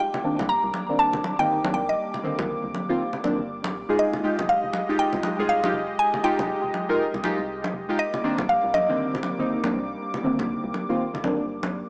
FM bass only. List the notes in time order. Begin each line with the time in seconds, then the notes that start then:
0.39 C2
0.64 C2
1.14 G1
1.39 G1
1.64 A#1
1.74 C2
1.89 A#1
2.39 C2
2.64 C2
3.39 G1
3.74 A#1
4.39 F1
4.64 F1
5.14 C2
5.39 C2
5.64 D#1
5.74 F1
5.89 D#1
6.39 F1
6.64 F1
7.14 C2
7.39 C2
7.64 D#1
7.74 F1
7.89 D#1
8.39 C2
8.64 C2
9.14 G1
9.39 G1
9.64 A#1
9.74 C2
9.89 A#1
10.39 C2
10.64 C2
11.14 G1
11.24 G1